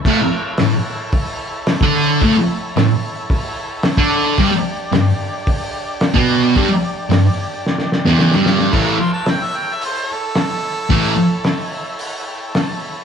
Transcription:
<<
  \new Staff \with { instrumentName = "Harmonica" } { \time 4/4 \key a \mixolydian \tempo 4 = 110 r1 | r1 | r1 | r1 |
r8 c'''16 a''16 g''16 e''16 g''16 e''16 c''8 a'4.~ | a'4. r2 r8 | }
  \new Staff \with { instrumentName = "Transistor combo organ" } { \time 4/4 \key a \mixolydian << { r1 | r1 | r1 | r1 |
r1 | r4. e''8 fis''8 g''8 a''8 b''8 | } \\ { <e' a' cis''>1~ | <e' a' cis''>1 | <d' g' d''>1~ | <d' g' d''>1 |
<e' a' cis''>1~ | <e' a' cis''>1 | } >> }
  \new Staff \with { instrumentName = "Distorted electric guitar" } { \clef bass \time 4/4 \key a \mixolydian <a, a>16 r8. a,16 r2 <d d'>8. | <a, a>16 r8. a,16 r2 <d d'>8. | <g, g>16 r8. g,16 r2 <b, b>8. | <g, g>16 r8. g,16 r4. <e, e>8 <g, g>8. |
<a, e a>8 r2. r8 | <a, e a>8 r2. r8 | }
  \new DrumStaff \with { instrumentName = "Drums" } \drummode { \time 4/4 <cymc bd>4 <hho sn>4 <hho bd>4 <hho sn>16 bd8. | <hho bd>4 <hho sn>4 <hho bd>4 <hho sn>16 bd8. | <hho bd>4 <hho sn>4 <hho bd>4 <hho sn>16 bd8. | <hho bd>4 <hho sn>4 sn16 sn16 sn16 sn16 sn16 sn16 sn16 sn16 |
<cymc bd>4 <hho sn>4 hho4 <hho sn>4 | <hho bd>4 <hho sn>4 hho4 <hho sn>4 | }
>>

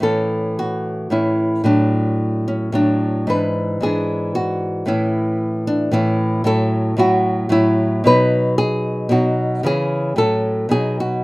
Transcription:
\new Staff \with { instrumentName = "Nylon-string guitar" } { \time 3/4 \key a \major \tempo 4 = 112 << { a'4 fis'4 e'4 | d'4. cis'8 d'4 | b'4 gis'4 fis'4 | e'4. d'8 e'4 |
\key fis \dorian a'4 fis'4 e'4 | b'4 gis'4 fis'4 | gis'4 a'4 gis'8 fis'8 | } \\ { <a, e cis'>2 <a, e cis'>4 | <a, fis>2 <a, fis>4 | <gis, e d'>4 <gis, e d'>2 | <a, e cis'>2 <a, e cis'>4 |
<a, fis e'>4 <a, fis e'>4 <a, fis>4 | <b, fis dis'>2 <b, fis dis'>4 | <cis e cis'>4 <a, fis cis'>4 <b, fis dis'>4 | } >> }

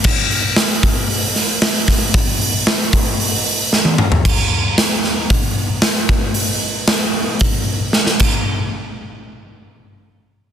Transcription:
\new DrumStaff \with { instrumentName = "Drums" } \drummode { \time 4/4 \tempo 4 = 114 <cymc bd>8 hho8 <hho sn>8 <hho bd>8 hho8 <hho sn>8 <hho sn>8 <hho bd sn>8 | <hho bd>8 hho8 <hho sn>8 <hho bd>8 hho8 hho8 sn16 tommh16 toml16 tomfh16 | <cymc bd>4 <hho sn>8 sn8 <hho bd>4 <hho sn>8 bd8 | hho4 <hho sn>4 <hho bd>4 sn16 sn16 <cymc bd>8 |
r4 r4 r4 r4 | }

